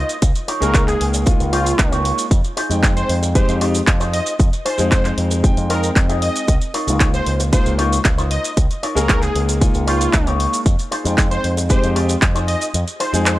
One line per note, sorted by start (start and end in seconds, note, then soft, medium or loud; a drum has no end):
0.00 0.16 D#4 medium
0.00 0.16 F4 medium
0.00 0.16 A#4 medium
0.00 0.16 C5 loud
0.00 0.14 D#5 medium
0.09 closed hi-hat soft
0.09 maracas medium
0.09 shaker medium
0.22 0.31 C#2 loud
0.22 kick loud
0.22 closed hi-hat medium
0.22 maracas medium
0.22 shaker medium
0.35 closed hi-hat soft
0.35 maracas soft
0.35 shaker soft
0.48 0.81 D#4 loud
0.48 0.81 F4 loud
0.48 0.81 A#4 loud
0.48 0.81 C#5 loud
0.48 open hi-hat loud
0.60 0.94 C#2 loud
0.60 1.23 G#3 loud
0.60 1.23 A#3 medium
0.60 1.24 D#4 medium
0.60 1.24 G#4 loud
0.60 0.85 A#4 loud
0.60 closed hi-hat soft
0.60 shaker medium
0.60 maracas medium
0.74 kick loud
0.74 clap loud
0.74 closed hi-hat medium
0.74 shaker medium
0.74 maracas medium
0.88 1.05 G#4 medium
0.88 clap soft
0.88 closed hi-hat soft
0.88 maracas soft
0.88 shaker soft
1.01 1.33 C#2 medium
1.01 open hi-hat loud
1.14 muted clean electric guitar stroke medium
1.14 closed hi-hat soft
1.14 maracas medium
1.14 shaker medium
1.25 2.29 G#3 medium
1.25 2.29 A#3 medium
1.25 2.29 D#4 medium
1.25 2.30 F4 loud
1.25 muted clean electric guitar stroke soft
1.25 kick loud
1.25 closed hi-hat loud
1.25 maracas medium
1.25 shaker medium
1.40 1.72 C#2 loud
1.40 closed hi-hat soft
1.40 maracas soft
1.40 shaker soft
1.52 1.72 D#4 loud
1.52 1.92 F4 loud
1.52 1.72 F4 loud
1.52 1.73 A#4 loud
1.52 1.72 C#5 loud
1.52 open hi-hat loud
1.66 closed hi-hat soft
1.66 maracas medium
1.66 shaker medium
1.79 2.11 C#2 loud
1.79 kick loud
1.79 clap loud
1.79 closed hi-hat medium
1.79 maracas medium
1.79 shaker medium
1.92 2.25 D#4 medium
1.92 2.25 F4 medium
1.92 2.25 A#4 medium
1.92 2.25 C#5 loud
1.92 closed hi-hat soft
1.92 maracas soft
1.92 shaker soft
2.05 open hi-hat loud
2.18 closed hi-hat soft
2.18 maracas medium
2.18 shaker medium
2.31 2.40 F2 loud
2.31 kick loud
2.31 closed hi-hat medium
2.31 maracas medium
2.31 shaker medium
2.44 closed hi-hat soft
2.44 maracas soft
2.44 shaker soft
2.57 2.90 D#4 loud
2.57 2.90 F4 loud
2.57 2.90 G#4 loud
2.57 2.90 C5 loud
2.57 open hi-hat loud
2.69 3.02 F2 loud
2.69 3.32 G#3 medium
2.69 3.32 C4 medium
2.69 3.32 D#4 medium
2.69 3.33 G5 medium
2.69 closed hi-hat soft
2.69 maracas medium
2.69 shaker medium
2.83 kick loud
2.83 clap loud
2.83 closed hi-hat medium
2.83 shaker medium
2.83 maracas medium
2.96 3.14 C5 loud
2.96 closed hi-hat soft
2.96 maracas soft
2.96 shaker soft
3.09 3.41 F2 medium
3.09 open hi-hat loud
3.22 muted clean electric guitar stroke medium
3.22 closed hi-hat soft
3.22 maracas medium
3.22 shaker medium
3.35 3.58 G#3 loud
3.35 3.58 C4 medium
3.35 3.58 D#4 medium
3.35 3.59 G4 loud
3.35 3.53 C5 medium
3.35 muted clean electric guitar stroke soft
3.35 kick loud
3.35 closed hi-hat medium
3.35 shaker medium
3.35 maracas medium
3.49 3.80 F2 loud
3.49 closed hi-hat soft
3.49 shaker soft
3.49 maracas soft
3.61 3.76 G#3 medium
3.61 3.76 C4 medium
3.61 3.76 D#4 medium
3.61 3.81 D#4 loud
3.61 3.81 F4 loud
3.61 3.76 G4 loud
3.61 3.81 G#4 loud
3.61 3.81 C5 loud
3.61 open hi-hat loud
3.74 closed hi-hat soft
3.74 maracas medium
3.74 shaker medium
3.87 4.19 F2 loud
3.87 kick loud
3.87 clap loud
3.87 closed hi-hat medium
3.87 shaker medium
3.87 maracas medium
4.00 4.33 D#4 medium
4.00 4.33 F4 medium
4.00 4.33 G#4 medium
4.00 4.33 C5 loud
4.00 closed hi-hat soft
4.00 maracas soft
4.00 shaker soft
4.13 4.31 D#5 medium
4.13 open hi-hat loud
4.26 closed hi-hat soft
4.26 maracas medium
4.26 shaker medium
4.39 4.48 F2 loud
4.39 kick loud
4.39 closed hi-hat medium
4.39 maracas medium
4.39 shaker medium
4.53 closed hi-hat soft
4.53 maracas soft
4.53 shaker soft
4.65 4.98 D#4 loud
4.65 4.98 F4 loud
4.65 4.99 G#4 loud
4.65 4.98 C5 loud
4.65 4.83 C5 loud
4.65 open hi-hat loud
4.78 5.11 F2 loud
4.78 5.40 G#3 loud
4.78 5.41 C4 medium
4.78 5.41 D#4 medium
4.78 5.41 G#4 loud
4.78 closed hi-hat soft
4.78 maracas medium
4.78 shaker medium
4.92 5.10 C5 medium
4.92 kick loud
4.92 clap loud
4.92 closed hi-hat medium
4.92 maracas medium
4.92 shaker medium
5.05 clap soft
5.05 closed hi-hat soft
5.05 maracas soft
5.05 shaker soft
5.18 5.50 F2 medium
5.18 open hi-hat medium
5.31 muted clean electric guitar stroke loud
5.31 closed hi-hat soft
5.31 maracas medium
5.31 shaker medium
5.43 6.46 G#3 medium
5.43 6.46 C4 medium
5.43 6.47 D#4 medium
5.43 6.47 G5 loud
5.43 muted clean electric guitar stroke soft
5.43 kick loud
5.43 closed hi-hat medium
5.43 maracas medium
5.43 shaker medium
5.57 5.89 F2 loud
5.57 closed hi-hat soft
5.57 maracas soft
5.57 shaker soft
5.70 5.90 D#4 loud
5.70 5.90 F4 loud
5.70 5.90 G#4 loud
5.70 5.88 A#4 loud
5.70 5.90 C5 loud
5.70 open hi-hat loud
5.83 closed hi-hat soft
5.83 maracas medium
5.83 shaker medium
5.96 6.28 F2 medium
5.96 kick loud
5.96 clap loud
5.96 closed hi-hat medium
5.96 maracas medium
5.96 shaker medium
6.09 6.42 D#4 medium
6.09 6.42 F4 medium
6.09 6.42 G#4 medium
6.09 6.42 D#5 loud
6.09 closed hi-hat soft
6.09 maracas soft
6.09 shaker soft
6.22 6.54 D#5 loud
6.22 open hi-hat loud
6.36 closed hi-hat soft
6.36 shaker medium
6.36 maracas medium
6.48 6.57 C#2 loud
6.48 kick loud
6.48 closed hi-hat medium
6.48 maracas medium
6.48 shaker medium
6.61 closed hi-hat soft
6.61 maracas soft
6.61 shaker soft
6.74 7.07 D#4 loud
6.74 7.07 F4 loud
6.74 7.07 A#4 loud
6.74 7.07 C#5 loud
6.74 open hi-hat loud
6.87 7.19 C#2 loud
6.87 7.49 G#3 medium
6.87 7.49 A#3 medium
6.87 7.50 D#4 medium
6.87 7.50 F4 medium
6.87 closed hi-hat soft
6.87 maracas medium
6.87 shaker medium
7.00 kick loud
7.00 clap loud
7.00 closed hi-hat medium
7.00 maracas medium
7.00 shaker medium
7.14 7.31 C5 medium
7.14 closed hi-hat soft
7.14 maracas soft
7.14 shaker soft
7.26 7.59 C#2 medium
7.26 open hi-hat medium
7.40 muted clean electric guitar stroke medium
7.40 closed hi-hat soft
7.40 maracas medium
7.40 shaker medium
7.52 7.75 G#3 loud
7.52 7.76 A#3 medium
7.52 7.76 D#4 medium
7.52 7.76 F4 loud
7.52 7.70 C5 loud
7.52 muted clean electric guitar stroke soft
7.52 kick loud
7.52 closed hi-hat medium
7.52 shaker medium
7.52 maracas medium
7.66 7.98 C#2 loud
7.66 closed hi-hat soft
7.66 maracas soft
7.66 shaker soft
7.78 7.93 G#3 medium
7.78 7.93 A#3 medium
7.78 7.94 D#4 medium
7.78 7.98 D#4 loud
7.78 7.98 F4 loud
7.78 7.94 F4 loud
7.78 7.98 A#4 loud
7.78 7.98 C#5 loud
7.78 open hi-hat loud
7.93 closed hi-hat soft
7.93 maracas medium
7.93 shaker medium
8.05 8.37 C#2 loud
8.05 kick loud
8.05 clap loud
8.05 closed hi-hat medium
8.05 maracas medium
8.05 shaker medium
8.18 8.51 D#4 medium
8.18 8.51 F4 medium
8.18 8.51 A#4 medium
8.18 8.51 C5 loud
8.18 closed hi-hat soft
8.18 shaker soft
8.18 maracas soft
8.31 8.49 D#5 medium
8.31 open hi-hat loud
8.44 closed hi-hat soft
8.44 maracas medium
8.44 shaker medium
8.57 8.66 C#2 loud
8.57 kick loud
8.57 closed hi-hat loud
8.57 maracas medium
8.57 shaker medium
8.71 closed hi-hat soft
8.71 maracas soft
8.71 shaker soft
8.83 9.16 D#4 loud
8.83 9.16 F4 loud
8.83 9.16 A#4 loud
8.83 9.16 C#5 loud
8.83 open hi-hat loud
8.95 9.28 C#2 loud
8.95 9.58 G#3 loud
8.95 9.58 A#3 medium
8.95 9.58 D#4 medium
8.95 9.59 G#4 loud
8.95 9.20 A#4 medium
8.95 closed hi-hat soft
8.95 maracas medium
8.95 shaker medium
9.09 kick loud
9.09 clap loud
9.09 closed hi-hat medium
9.09 maracas medium
9.09 shaker medium
9.22 9.40 G#4 loud
9.22 clap soft
9.22 closed hi-hat soft
9.22 maracas soft
9.22 shaker soft
9.35 9.67 C#2 medium
9.35 open hi-hat medium
9.48 muted clean electric guitar stroke medium
9.48 closed hi-hat soft
9.48 maracas medium
9.48 shaker medium
9.60 10.64 G#3 medium
9.60 10.64 A#3 medium
9.60 10.64 D#4 medium
9.60 10.65 F4 loud
9.60 muted clean electric guitar stroke soft
9.60 kick loud
9.60 closed hi-hat medium
9.60 maracas medium
9.60 shaker medium
9.74 10.06 C#2 loud
9.74 closed hi-hat soft
9.74 maracas soft
9.74 shaker soft
9.87 10.07 D#4 loud
9.87 10.27 F4 loud
9.87 10.07 F4 loud
9.87 10.07 A#4 loud
9.87 10.07 C#5 loud
9.87 open hi-hat loud
10.01 closed hi-hat soft
10.01 maracas medium
10.01 shaker medium
10.13 10.46 C#2 loud
10.13 kick loud
10.13 clap loud
10.13 closed hi-hat loud
10.13 maracas medium
10.13 shaker medium
10.27 10.59 D#4 medium
10.27 10.59 F4 medium
10.27 10.59 A#4 medium
10.27 10.59 C#5 loud
10.27 closed hi-hat soft
10.27 maracas soft
10.27 shaker soft
10.40 open hi-hat medium
10.53 closed hi-hat soft
10.53 maracas medium
10.53 shaker medium
10.66 10.74 F2 loud
10.66 kick loud
10.66 closed hi-hat loud
10.66 maracas medium
10.66 shaker medium
10.79 closed hi-hat soft
10.79 maracas soft
10.79 shaker soft
10.91 11.25 D#4 loud
10.91 11.25 F4 loud
10.91 11.25 G#4 loud
10.91 11.25 C5 loud
10.91 open hi-hat loud
11.04 11.37 F2 loud
11.04 11.66 G#3 medium
11.04 11.67 C4 medium
11.04 11.67 D#4 medium
11.04 11.67 G5 medium
11.04 closed hi-hat soft
11.04 shaker medium
11.04 maracas medium
11.18 kick loud
11.18 clap loud
11.18 closed hi-hat medium
11.18 shaker medium
11.18 maracas medium
11.31 11.49 C5 loud
11.31 closed hi-hat soft
11.31 shaker soft
11.31 maracas soft
11.44 11.76 F2 medium
11.44 open hi-hat medium
11.57 muted clean electric guitar stroke medium
11.57 closed hi-hat soft
11.57 maracas medium
11.57 shaker medium
11.69 11.93 G#3 loud
11.69 11.93 C4 medium
11.69 11.93 D#4 medium
11.69 11.93 G4 loud
11.69 11.88 C5 loud
11.69 muted clean electric guitar stroke soft
11.69 kick loud
11.69 closed hi-hat loud
11.69 maracas medium
11.69 shaker medium
11.83 12.15 F2 loud
11.83 closed hi-hat soft
11.83 maracas soft
11.83 shaker soft
11.95 12.11 G#3 medium
11.95 12.11 C4 medium
11.95 12.11 D#4 medium
11.95 12.16 D#4 loud
11.95 12.16 F4 loud
11.95 12.11 G4 loud
11.95 12.16 G#4 loud
11.95 12.16 C5 loud
11.95 open hi-hat loud
12.09 closed hi-hat soft
12.09 maracas medium
12.09 shaker medium
12.22 12.54 F2 loud
12.22 kick loud
12.22 clap loud
12.22 closed hi-hat loud
12.22 maracas medium
12.22 shaker medium
12.35 12.68 D#4 loud
12.35 12.68 F4 medium
12.35 12.68 G#4 loud
12.35 12.68 C5 loud
12.35 closed hi-hat soft
12.35 shaker soft
12.35 maracas soft
12.48 12.66 D#5 medium
12.48 open hi-hat medium
12.61 closed hi-hat soft
12.61 maracas medium
12.61 shaker medium
12.74 12.83 F2 loud
12.74 closed hi-hat loud
12.74 shaker medium
12.74 maracas medium
12.88 closed hi-hat soft
12.88 maracas soft
12.88 shaker soft
13.00 13.33 D#4 loud
13.00 13.33 F4 loud
13.00 13.33 G#4 loud
13.00 13.33 C5 loud
13.00 13.18 C5 loud
13.00 open hi-hat loud
13.13 13.39 F2 loud
13.13 13.39 G#3 loud
13.13 13.39 C4 medium
13.13 13.39 D#4 medium
13.13 13.39 G#4 loud
13.13 closed hi-hat soft
13.13 shaker medium
13.13 maracas medium
13.26 13.39 C5 medium
13.26 clap loud
13.26 closed hi-hat medium
13.26 maracas medium
13.26 shaker medium